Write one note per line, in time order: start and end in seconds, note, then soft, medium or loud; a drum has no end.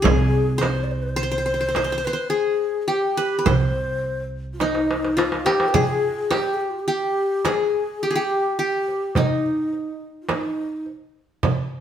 0.02 2.05 C2 loud
0.02 1.23 G#4 medium
0.02 0.65 G#4 medium
0.02 darbuka dum medium
0.02 frame drum loud
0.58 1.16 C5 medium
0.58 darbuka tek medium
0.63 0.85 C5 medium
0.63 frame drum medium
0.84 0.93 D5 medium
0.91 1.04 C5 medium
1.02 1.10 B4 medium
1.09 1.18 C5 medium
1.16 1.23 C5 medium
1.16 2.06 C5 medium
1.23 1.31 C5 medium
1.32 1.38 C5 medium
1.38 1.45 C5 medium
1.46 1.53 C5 medium
1.54 1.60 C5 medium
1.61 1.68 C5 medium
1.69 1.76 C5 medium
1.75 1.84 C5 medium
1.75 darbuka tek medium
1.75 frame drum medium
1.84 1.92 C5 medium
1.92 1.97 C5 medium
1.98 2.07 C5 medium
2.04 2.31 B4 medium
2.04 2.13 C5 medium
2.04 darbuka ka soft
2.13 3.23 C5 medium
2.30 2.94 G#4 medium
2.30 2.82 G#4 medium
2.30 darbuka ka soft
2.82 2.91 G#4 medium
2.88 4.13 G4 medium
2.88 3.50 G4 medium
2.88 darbuka ka soft
3.17 3.38 B4 medium
3.17 darbuka ka soft
3.39 3.52 B4 medium
3.46 5.47 C2 medium
3.46 5.13 C5 medium
3.46 4.24 C5 medium
3.46 frame drum medium
3.46 darbuka dum loud
4.03 darbuka ka soft
4.53 4.61 F4 medium
4.60 5.19 D#4 medium
4.60 6.05 D#4 medium
4.60 darbuka tek medium
4.60 frame drum medium
4.75 darbuka ka medium
4.91 darbuka tek medium
5.05 darbuka ka medium
5.17 6.51 F4 medium
5.17 5.47 F4 medium
5.17 darbuka tek medium
5.32 darbuka ka medium
5.45 5.70 G4 medium
5.45 5.80 G4 medium
5.45 darbuka tek medium
5.60 darbuka ka medium
5.68 5.76 B4 medium
5.74 6.36 G#4 medium
5.74 6.33 G#4 medium
5.74 frame drum medium
5.74 darbuka dum medium
6.30 6.87 G4 medium
6.30 6.55 G4 medium
6.30 darbuka tek medium
6.30 frame drum medium
6.54 6.62 G#4 medium
6.60 6.72 G4 medium
6.70 6.81 F4 medium
6.79 6.88 G4 medium
6.88 7.51 G4 medium
6.88 7.47 G4 medium
7.45 8.09 G#4 medium
7.45 8.05 G#4 medium
7.45 darbuka tek medium
7.45 frame drum medium
7.74 darbuka ka soft
8.03 8.15 G4 medium
8.03 8.17 G4 medium
8.11 8.21 G#4 medium
8.15 8.58 G4 medium
8.15 8.56 G4 medium
8.58 9.20 G4 medium
8.58 9.84 G4 medium
8.88 darbuka ka soft
9.15 10.83 D#4 medium
9.15 10.03 D#4 medium
9.15 darbuka dum medium
9.15 frame drum medium
9.73 darbuka ka soft
10.22 10.31 F4 soft
10.29 10.86 D#4 medium
10.29 darbuka tek medium
10.29 frame drum medium
10.86 darbuka ka soft
11.43 frame drum medium
11.43 darbuka dum medium